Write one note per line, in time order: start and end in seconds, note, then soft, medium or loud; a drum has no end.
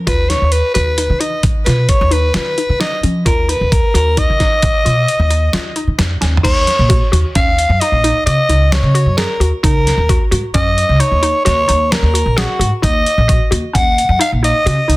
0.07 0.35 D#2 medium
0.07 0.21 F4 medium
0.07 0.31 B4 medium
0.07 kick medium
0.07 closed hi-hat medium
0.29 0.58 D#4 medium
0.29 0.54 C#5 medium
0.29 snare soft
0.29 closed hi-hat medium
0.41 0.60 D#2 medium
0.52 0.74 B4 medium
0.52 closed hi-hat medium
0.74 1.03 D#2 medium
0.74 0.89 F#4 medium
0.74 1.22 B4 medium
0.74 closed hi-hat medium
0.98 1.12 D#4 medium
0.98 closed hi-hat medium
1.10 1.28 D#3 medium
1.20 1.49 D#4 medium
1.20 1.43 D#5 medium
1.20 closed hi-hat medium
1.43 1.62 D#3 medium
1.43 kick loud
1.43 closed hi-hat medium
1.65 1.85 B2 medium
1.65 1.95 F4 medium
1.65 1.90 B4 medium
1.65 snare soft
1.65 closed hi-hat medium
1.89 2.14 C#5 medium
1.89 kick medium
1.89 closed hi-hat medium
2.01 2.29 D#2 medium
2.11 2.25 D#4 medium
2.11 2.35 B4 medium
2.11 closed hi-hat medium
2.34 2.53 D#3 medium
2.34 2.49 F4 medium
2.34 2.78 B4 medium
2.34 snare loud
2.34 closed hi-hat medium
2.58 2.72 D#4 medium
2.58 closed hi-hat medium
2.69 2.88 D#3 medium
2.80 2.94 D#4 medium
2.80 3.02 D#5 medium
2.80 snare medium
2.80 closed hi-hat medium
3.03 3.22 F3 medium
3.03 3.18 C#4 medium
3.03 closed hi-hat medium
3.26 3.54 D#2 medium
3.26 3.40 F4 medium
3.26 3.51 A#4 medium
3.26 kick medium
3.26 closed hi-hat medium
3.49 3.77 D#4 medium
3.49 3.73 B4 medium
3.49 closed hi-hat medium
3.61 3.79 D#2 medium
3.72 3.94 A#4 medium
3.72 kick loud
3.72 closed hi-hat medium
3.94 4.22 D#2 medium
3.94 4.08 F#4 medium
3.94 4.20 A#4 medium
3.94 closed hi-hat medium
4.17 4.31 D#4 medium
4.17 6.00 D#5 loud
4.17 kick medium
4.17 closed hi-hat medium
4.30 4.48 D#3 medium
4.40 4.69 D#4 medium
4.40 kick medium
4.40 snare soft
4.40 closed hi-hat medium
4.62 4.81 D#3 medium
4.62 kick medium
4.62 closed hi-hat medium
4.85 5.04 B2 medium
4.85 5.14 F4 medium
4.85 closed hi-hat medium
5.08 closed hi-hat medium
5.19 5.47 D#2 medium
5.30 5.45 D#4 medium
5.30 closed hi-hat medium
5.53 5.72 D#3 medium
5.53 5.68 F4 medium
5.53 snare loud
5.53 closed hi-hat medium
5.76 5.90 D#4 medium
5.76 closed hi-hat medium
5.87 5.97 D#3 medium
5.98 6.20 F2 medium
5.98 6.13 D#4 medium
5.98 snare medium
5.98 closed hi-hat medium
6.21 6.42 D#2 medium
6.21 6.36 C#4 medium
6.21 snare medium
6.21 closed hi-hat medium
6.37 floor tom medium
6.43 6.63 D#2 medium
6.43 6.73 D#4 medium
6.43 7.09 C#5 loud
6.43 kick loud
6.43 closed hi-hat medium
6.43 crash medium
6.67 snare soft
6.67 closed hi-hat medium
6.79 6.98 A#1 medium
6.89 7.04 F#4 medium
6.89 kick loud
6.89 closed hi-hat medium
7.12 7.22 D#2 medium
7.12 7.27 F#4 medium
7.12 closed hi-hat medium
7.35 7.64 D#2 medium
7.35 7.64 C#4 medium
7.35 7.82 F5 medium
7.35 kick loud
7.35 closed hi-hat medium
7.59 closed hi-hat medium
7.69 7.79 F#2 medium
7.80 7.96 D#4 medium
7.80 8.26 D#5 loud
7.80 closed hi-hat medium
7.92 8.11 A#1 medium
8.04 8.19 D#4 medium
8.04 closed hi-hat medium
8.26 8.36 C#3 medium
8.26 8.41 F#4 medium
8.26 8.74 D#5 loud
8.26 closed hi-hat medium
8.49 8.77 C#2 medium
8.49 8.78 D#4 medium
8.49 closed hi-hat medium
8.72 9.17 C#5 medium
8.72 snare loud
8.72 closed hi-hat medium
8.83 9.02 C#3 medium
8.94 9.09 F#4 medium
8.94 closed hi-hat medium
9.06 9.25 F#2 medium
9.17 9.32 G#4 medium
9.17 9.50 A#4 medium
9.17 snare loud
9.17 closed hi-hat medium
9.40 9.50 D#2 medium
9.40 9.55 F#4 medium
9.40 closed hi-hat medium
9.63 9.92 C#2 medium
9.63 9.92 D#4 medium
9.63 10.29 A#4 medium
9.63 kick loud
9.63 closed hi-hat medium
9.87 snare soft
9.87 closed hi-hat medium
9.97 10.16 D#2 medium
10.09 10.24 F#4 medium
10.09 kick loud
10.09 closed hi-hat medium
10.31 10.41 G#2 medium
10.31 10.46 F#4 medium
10.31 closed hi-hat medium
10.54 10.83 F#2 medium
10.54 10.83 C#4 medium
10.54 11.02 D#5 loud
10.54 kick loud
10.54 closed hi-hat medium
10.78 closed hi-hat medium
10.89 10.98 C#2 medium
11.00 11.14 D#4 medium
11.00 11.44 C#5 medium
11.00 closed hi-hat medium
11.11 11.30 D#2 medium
11.22 11.37 D#4 medium
11.22 closed hi-hat medium
11.45 11.65 D#2 medium
11.45 11.60 F#4 medium
11.45 11.93 C#5 loud
11.45 snare soft
11.45 closed hi-hat medium
11.68 11.97 D#2 medium
11.68 11.97 D#4 medium
11.68 closed hi-hat medium
11.92 12.39 A#4 medium
11.92 snare loud
11.92 closed hi-hat medium
12.02 12.21 D#2 medium
12.14 12.28 F#4 medium
12.14 closed hi-hat medium
12.26 12.44 A#1 medium
12.37 12.72 F#4 medium
12.37 12.51 G#4 medium
12.37 snare loud
12.37 closed hi-hat medium
12.59 12.69 G#2 medium
12.59 12.74 F#4 medium
12.59 closed hi-hat medium
12.82 13.02 D#2 medium
12.82 13.11 D#4 medium
12.82 13.48 D#5 medium
12.82 kick loud
12.82 closed hi-hat medium
13.06 closed hi-hat medium
13.18 13.36 A#1 medium
13.28 13.43 F#4 medium
13.28 kick loud
13.28 closed hi-hat medium
13.51 13.61 D#2 loud
13.51 13.66 F#4 medium
13.51 closed hi-hat medium
13.73 14.03 D#2 medium
13.73 14.03 C#4 medium
13.73 14.17 F#5 loud
13.73 kick loud
13.73 closed hi-hat medium
13.98 closed hi-hat medium
14.09 14.18 F#2 medium
14.19 14.34 D#4 medium
14.19 14.31 F5 medium
14.19 closed hi-hat medium
14.32 14.51 A#1 medium
14.43 14.57 D#4 medium
14.43 14.97 D#5 medium
14.43 closed hi-hat medium
14.66 14.75 C#3 loud
14.66 14.80 F#4 medium
14.66 closed hi-hat medium
14.88 14.97 C#2 medium
14.88 14.97 D#4 medium
14.88 closed hi-hat medium